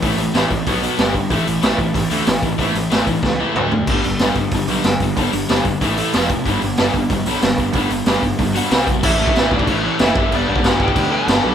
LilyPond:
<<
  \new Staff \with { instrumentName = "Lead electric guitar" } { \time 4/4 \key g \lydian \tempo 4 = 187 r1 | r1 | r1 | r1 |
r1 | r1 | r2 r8 <fis' fis''>4. | <e' e''>4. <d' d''>8 <cis' cis''>4 <e' e''>4 |
<d' d''>4 <fis' fis''>8 <g' g''>4 <a' a''>4. | }
  \new Staff \with { instrumentName = "Overdriven electric guitar" } { \clef bass \time 4/4 \key g \lydian <a, e a>8 <a, e>8 <a, e a>8 <a, e>8 <b, fis b>8 <b, fis b>8 <g d' g'>8 <g d'>8 | <a, e a>8 <a, e>8 <a, e a>8 <a, e>8 <a, e>8 <a, e a>8 <a, e>8 <a, e>8 | <a, e a>8 <a, e>8 <a, e a>8 <a, e>8 <a, e>8 <a, e a>8 <d a d'>8 <d a>8 | <g, d g>8 <g, d>8 <g, d g>8 <g, d>8 <g, d>8 <g, d g>8 <g, d>8 <g, d>8 |
<g, d g>8 <g, d>8 <g, d g>8 <g, d>8 <a, e a>8 <a, e a>8 <f c' f'>8 <f c'>8 | <g b d'>8 <g b>8 <g b d'>8 <g b>8 <g b>8 <g b d'>8 <g b>8 <g b>8 | <g b d'>8 <g b>8 <g b d'>8 <g b>8 <g b>8 <g b d'>8 <c g c'>8 <c g>8 | <a, e a cis' e'>8 <a, e a cis' e'>8 <a, e a cis' e'>8 <a, e a cis' e'>8 <a, e a cis' e'>8 <a, e a cis' e'>8 <a, e a cis' e'>8 <g, d g b d'>8 |
<g, d g b d'>8 <g, d g b d'>8 <g, d g b d'>8 <g, d g b d'>8 <g, d g b d'>8 <g, d g b d'>8 <g, d g b d'>8 <g, d g b d'>8 | }
  \new Staff \with { instrumentName = "Overdriven electric guitar" } { \clef bass \time 4/4 \key g \lydian <a, e a>2 <b, fis b>4 <g, d g>4 | <a, e a>2 <a, e a>2 | <a, e a>2 <a, e a>4 <d a d'>4 | <g, d g>2 <g, d g>2 |
<g, d g>2 <a, e a>4 <f, c f>4 | <g, d g>2 <g, d g>2 | <g, d g>2 <g, d g>4 <c g c'>4 | r1 |
r1 | }
  \new Staff \with { instrumentName = "Distorted electric guitar" } { \clef bass \time 4/4 \key g \lydian <a, e a>8 <a, e>8 <a, e a>8 <a, e>8 <b, fis b>8 <b, fis b>8 <g, d g>8 <g, d>8 | <a, e a>8 <a, e>8 <a, e a>8 <a, e>8 <a, e>8 <a, e a>8 <a, e>8 <a, e>8 | <a, e a>8 <a, e>8 <a, e a>8 <a, e>8 <a, e>8 <a, e a>8 <d a d'>8 <d a>8 | <g, d g>8 <g, d>8 <g, d g>8 <g, d>8 <g, d>8 <g, d g>8 <g, d>8 <g, d>8 |
<g, d g>8 <g, d>8 <g, d g>8 <g, d>8 <a, e a>8 <a, e a>8 <f, c f>8 <f, c>8 | <g, d g>8 <g, d>8 <g, d g>8 <g, d>8 <g, d>8 <g, d g>8 <g, d>8 <g, d>8 | <g, d g>8 <g, d>8 <g, d g>8 <g, d>8 <g, d>8 <g, d g>8 <c g c'>8 <c g>8 | <a, e a>8 <a, e a>8 <a, e a>8 <a, e a>8 <a, e a>8 <a, e a>8 <a, e a>8 <g, d g>8 |
<g, d g>8 <g, d g>8 <g, d g>8 <g, d g>8 <g, d g>8 <g, d g>8 <g, d g>8 <g, d g>8 | }
  \new Staff \with { instrumentName = "Picked electric bass" } { \clef bass \time 4/4 \key g \lydian a,,8 a,,8 a,,8 a,,8 b,,4 g,,4 | a,,8 a,,8 a,,8 a,,8 a,,8 d,8 a,,8 a,,8 | a,,8 a,,8 a,,8 a,,8 cis,4 d,4 | g,,8 g,,8 g,,8 g,,8 g,,8 b,,8 g,,8 g,,8 |
g,,8 g,,8 g,,8 g,,8 a,,4 f,,4 | g,,8 g,,8 g,,8 g,,8 g,,8 b,,8 g,,8 g,,8 | g,,8 g,,8 g,,8 g,,8 g,,4 c,4 | a,,8 a,,8 a,,8 a,,8 a,,4 fis,,8 g,,8 |
g,,8 g,,8 g,,4 d,4 g,,8 b,,8 | }
  \new DrumStaff \with { instrumentName = "Drums" } \drummode { \time 4/4 <hho bd>8 hho8 <hho sn>8 <hho bd>8 <hho bd>8 hho8 <hho sn>8 <hho bd>8 | <hho bd>8 hho8 <hho sn>8 <hho bd>8 <hho bd>8 hho8 <hho sn>8 <hho bd>8 | <hho bd>8 hho8 <hho sn>8 <hho bd>8 <bd sn>4 toml8 tomfh8 | <cymc bd>8 hho8 <hho sn>8 <hho bd>8 <hho bd>8 hho8 <hho sn>8 <hho bd>8 |
<hho bd>8 hho8 <hho sn>8 <hho bd>8 <hho bd>8 hho8 <hho sn>8 <hho bd>8 | <hho bd>8 hho8 <hho sn>8 <hho bd>8 <hho bd>8 hho8 <hho sn>8 <hho bd>8 | <hho bd>8 hho8 <hho sn>8 <hho bd>8 <hho bd>8 hho8 <hho sn>8 <hho bd>8 | <cymc bd>8. bd16 <cymc sn>8 bd16 bd16 <cymc bd>4 <cymc sn>8 bd8 |
cymc8. bd16 <cymc sn>8 bd16 bd16 <cymc bd>4 <cymc sn>4 | }
>>